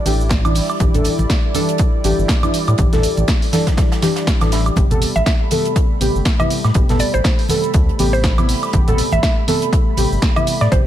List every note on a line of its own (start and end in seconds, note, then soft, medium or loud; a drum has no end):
0.00 10.87 G3 medium
0.00 4.73 E4 medium
0.00 4.73 D5 medium
0.05 0.61 A1 medium
0.05 0.34 E3 medium
0.05 0.34 D4 medium
0.05 0.34 G4 medium
0.05 closed hi-hat medium
0.05 open hi-hat medium
0.05 high conga medium
0.05 shaker medium
0.21 shaker soft
0.29 kick loud
0.29 snare loud
0.29 closed hi-hat medium
0.29 shaker soft
0.44 0.61 E3 medium
0.44 0.61 D4 medium
0.44 0.61 E4 medium
0.44 closed hi-hat soft
0.44 high conga medium
0.44 high woodblock medium
0.44 shaker soft
0.55 open hi-hat medium
0.55 open hi-hat loud
0.55 shaker medium
0.70 closed hi-hat soft
0.70 high woodblock medium
0.70 shaker soft
0.80 0.89 A1 loud
0.80 0.92 E3 medium
0.80 0.92 D4 medium
0.80 0.92 G4 medium
0.80 kick loud
0.80 closed hi-hat medium
0.80 high conga medium
0.80 shaker soft
0.94 1.08 A1 medium
0.94 1.10 E3 medium
0.94 1.11 D4 medium
0.94 1.11 A4 loud
0.94 closed hi-hat medium
0.94 closed hi-hat soft
0.94 low conga medium
0.94 shaker soft
1.04 closed hi-hat medium
1.04 open hi-hat loud
1.04 shaker medium
1.18 1.25 A1 medium
1.18 closed hi-hat soft
1.18 muted conga medium
1.18 high conga medium
1.18 shaker soft
1.30 kick loud
1.30 snare loud
1.30 closed hi-hat medium
1.30 shaker soft
1.54 2.01 E3 medium
1.54 2.02 D4 medium
1.54 2.02 A4 loud
1.54 closed hi-hat medium
1.54 open hi-hat loud
1.54 high conga medium
1.54 shaker medium
1.69 closed hi-hat medium
1.69 closed hi-hat soft
1.69 shaker soft
1.78 kick loud
1.78 closed hi-hat medium
1.78 shaker soft
2.04 2.13 A1 medium
2.04 2.32 E3 medium
2.04 2.32 D4 medium
2.04 2.32 G4 medium
2.04 closed hi-hat medium
2.04 open hi-hat loud
2.04 high conga medium
2.04 shaker medium
2.18 2.25 G1 loud
2.18 shaker soft
2.28 kick loud
2.28 snare loud
2.28 closed hi-hat medium
2.28 shaker soft
2.43 2.59 E3 medium
2.43 2.59 D4 medium
2.43 2.59 E4 medium
2.43 closed hi-hat soft
2.43 high conga medium
2.43 high woodblock medium
2.43 shaker soft
2.54 closed hi-hat medium
2.54 open hi-hat medium
2.54 shaker medium
2.67 2.74 A2 medium
2.67 closed hi-hat soft
2.67 high woodblock medium
2.67 shaker soft
2.78 2.87 A1 loud
2.78 2.90 E3 medium
2.78 2.90 D4 medium
2.78 2.91 G4 medium
2.78 kick loud
2.78 closed hi-hat medium
2.78 high conga medium
2.78 shaker soft
2.92 3.06 A1 medium
2.92 3.09 E3 medium
2.92 3.09 D4 medium
2.92 3.09 A4 loud
2.92 snare medium
2.92 closed hi-hat medium
2.92 low conga medium
2.92 shaker soft
3.03 closed hi-hat medium
3.03 open hi-hat loud
3.03 shaker medium
3.17 3.24 A1 medium
3.17 closed hi-hat soft
3.17 muted conga soft
3.17 high conga medium
3.17 shaker soft
3.28 kick loud
3.28 snare loud
3.28 closed hi-hat medium
3.28 shaker soft
3.42 open hi-hat medium
3.42 shaker soft
3.52 4.00 E3 medium
3.52 4.00 D4 medium
3.52 4.00 A4 loud
3.52 snare medium
3.52 closed hi-hat medium
3.52 open hi-hat loud
3.52 high conga medium
3.52 shaker medium
3.67 kick medium
3.67 snare medium
3.67 closed hi-hat medium
3.67 shaker soft
3.77 kick loud
3.77 snare loud
3.77 closed hi-hat medium
3.77 shaker soft
3.92 snare loud
3.92 closed hi-hat medium
3.92 shaker soft
4.02 4.30 E3 medium
4.02 4.30 D4 medium
4.02 4.31 G4 medium
4.02 snare loud
4.02 closed hi-hat medium
4.02 open hi-hat medium
4.02 high conga medium
4.02 shaker medium
4.16 snare medium
4.16 closed hi-hat medium
4.16 closed hi-hat soft
4.16 shaker soft
4.27 kick loud
4.27 snare loud
4.27 snare medium
4.27 closed hi-hat medium
4.27 shaker soft
4.41 4.70 A1 medium
4.41 4.50 E3 medium
4.41 4.50 D4 medium
4.41 4.51 A4 medium
4.41 snare medium
4.41 closed hi-hat medium
4.41 closed hi-hat soft
4.41 high conga medium
4.41 high woodblock medium
4.41 shaker soft
4.52 4.70 E3 medium
4.52 4.70 D4 medium
4.52 4.71 E4 medium
4.52 snare loud
4.52 closed hi-hat medium
4.52 open hi-hat medium
4.52 shaker medium
4.66 closed hi-hat soft
4.66 high woodblock medium
4.66 shaker soft
4.76 4.85 A1 loud
4.76 4.89 C3 medium
4.76 10.87 A3 medium
4.76 4.89 B3 medium
4.76 4.89 G4 medium
4.76 10.87 B5 medium
4.76 kick loud
4.76 closed hi-hat medium
4.76 high conga loud
4.76 shaker soft
4.90 5.05 A1 medium
4.90 5.07 C3 loud
4.90 5.07 B3 medium
4.90 5.07 A4 loud
4.90 closed hi-hat soft
4.90 closed hi-hat medium
4.90 low conga medium
4.90 shaker soft
5.02 closed hi-hat medium
5.02 open hi-hat loud
5.02 shaker medium
5.16 5.22 A1 medium
5.16 5.23 E5 medium
5.16 closed hi-hat soft
5.16 muted conga medium
5.16 high conga medium
5.16 shaker soft
5.26 5.35 E5 medium
5.26 kick loud
5.26 snare loud
5.26 closed hi-hat medium
5.26 shaker soft
5.51 5.98 C3 medium
5.51 5.98 B3 medium
5.51 5.98 A4 loud
5.51 closed hi-hat medium
5.51 open hi-hat loud
5.51 high conga medium
5.51 shaker medium
5.65 closed hi-hat medium
5.65 closed hi-hat soft
5.65 shaker soft
5.76 kick loud
5.76 closed hi-hat medium
5.76 shaker soft
6.00 6.09 A1 medium
6.00 6.29 C3 medium
6.00 6.29 B3 medium
6.00 6.29 G4 medium
6.00 closed hi-hat medium
6.00 open hi-hat loud
6.00 high conga medium
6.00 shaker medium
6.15 6.21 G1 medium
6.15 shaker soft
6.25 kick loud
6.25 snare loud
6.25 closed hi-hat medium
6.25 shaker soft
6.39 6.56 C3 medium
6.39 6.56 B3 medium
6.39 6.56 E4 medium
6.39 6.60 E5 medium
6.39 closed hi-hat soft
6.39 high conga loud
6.39 high woodblock medium
6.39 shaker soft
6.50 closed hi-hat medium
6.50 open hi-hat loud
6.50 shaker medium
6.64 6.71 A2 medium
6.64 snare soft
6.64 high woodblock medium
6.64 shaker soft
6.74 6.84 A1 loud
6.74 6.87 C3 medium
6.74 6.87 B3 medium
6.74 6.87 G4 medium
6.74 kick loud
6.74 closed hi-hat medium
6.74 high conga medium
6.74 shaker soft
6.89 7.03 A1 medium
6.89 7.05 C3 medium
6.89 7.06 B3 medium
6.89 7.06 A4 loud
6.89 snare medium
6.89 closed hi-hat medium
6.89 low conga loud
6.89 shaker soft
6.99 7.11 D5 medium
6.99 closed hi-hat medium
6.99 open hi-hat loud
6.99 shaker medium
7.14 7.21 A1 medium
7.14 7.34 C5 medium
7.14 closed hi-hat soft
7.14 muted conga soft
7.14 high conga medium
7.14 shaker soft
7.24 kick loud
7.24 snare loud
7.24 closed hi-hat medium
7.24 shaker soft
7.39 open hi-hat medium
7.49 7.96 C3 medium
7.49 7.96 B3 medium
7.49 7.97 A4 loud
7.49 closed hi-hat medium
7.49 open hi-hat loud
7.49 high conga loud
7.49 shaker medium
7.64 closed hi-hat soft
7.64 shaker soft
7.74 7.91 D2 medium
7.74 kick loud
7.74 closed hi-hat medium
7.74 shaker soft
7.89 closed hi-hat soft
7.99 8.54 A1 medium
7.99 8.27 C3 medium
7.99 8.27 B3 medium
7.99 8.27 G4 medium
7.99 closed hi-hat medium
7.99 open hi-hat loud
7.99 high conga medium
7.99 shaker medium
8.13 8.49 C5 medium
8.13 shaker soft
8.24 kick loud
8.24 snare loud
8.24 closed hi-hat medium
8.24 shaker soft
8.37 8.54 C3 medium
8.37 8.54 B3 medium
8.37 8.54 E4 loud
8.37 closed hi-hat soft
8.37 high conga medium
8.37 high woodblock medium
8.37 shaker soft
8.49 open hi-hat loud
8.49 open hi-hat medium
8.49 shaker medium
8.63 closed hi-hat soft
8.63 high woodblock medium
8.63 shaker soft
8.73 8.82 A1 loud
8.73 8.85 C3 medium
8.73 8.85 B3 medium
8.73 8.86 G4 medium
8.73 kick loud
8.73 closed hi-hat medium
8.73 high conga loud
8.73 shaker soft
8.87 9.01 A1 medium
8.87 9.04 C3 medium
8.87 9.04 B3 medium
8.87 9.04 A4 loud
8.87 closed hi-hat soft
8.87 closed hi-hat medium
8.87 low conga loud
8.87 shaker soft
8.98 closed hi-hat medium
8.98 open hi-hat loud
8.98 shaker medium
9.12 9.19 A1 medium
9.12 9.19 E5 medium
9.12 closed hi-hat soft
9.12 muted conga medium
9.12 high conga medium
9.12 shaker soft
9.23 9.32 E5 medium
9.23 kick loud
9.23 snare loud
9.23 closed hi-hat medium
9.23 shaker soft
9.47 9.95 C3 medium
9.47 9.95 B3 medium
9.47 9.95 A4 loud
9.47 closed hi-hat medium
9.47 open hi-hat loud
9.47 high conga loud
9.47 shaker medium
9.62 closed hi-hat soft
9.62 shaker soft
9.73 kick loud
9.73 closed hi-hat medium
9.73 shaker soft
9.97 10.06 A1 medium
9.97 10.25 C3 medium
9.97 10.26 B3 medium
9.97 10.26 G4 medium
9.97 closed hi-hat medium
9.97 open hi-hat loud
9.97 high conga medium
9.97 shaker medium
10.11 10.18 G1 loud
10.11 shaker soft
10.22 kick loud
10.22 snare loud
10.22 closed hi-hat medium
10.22 shaker soft
10.36 10.52 C3 medium
10.36 10.53 B3 medium
10.36 10.53 E4 medium
10.36 10.56 E5 medium
10.36 closed hi-hat soft
10.36 high conga loud
10.36 high woodblock medium
10.36 shaker soft
10.47 closed hi-hat medium
10.47 open hi-hat loud
10.47 shaker medium
10.61 10.68 A2 medium
10.61 10.70 D5 medium
10.61 snare soft
10.61 closed hi-hat soft
10.61 high woodblock medium
10.61 shaker soft
10.71 10.80 A1 loud
10.71 10.84 C3 medium
10.71 10.84 B3 medium
10.71 10.84 G4 medium
10.71 10.81 C5 medium
10.71 kick loud
10.71 closed hi-hat medium
10.71 high conga loud
10.71 shaker soft